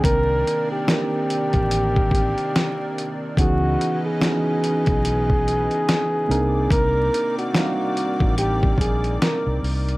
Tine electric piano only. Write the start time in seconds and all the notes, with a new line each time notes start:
Already playing: D#3 A#3 C4 D4 G5
0.87 D#3 A#3 C4 D4 A#4
3.37 D#3 B3 C#4 D#4 G#4
3.43 E3
4.20 E3 B3 C#4 D#4 F#4
6.28 A#3 C4 D4 D#4 A#4
7.53 G3 C4 D4 D#4 F5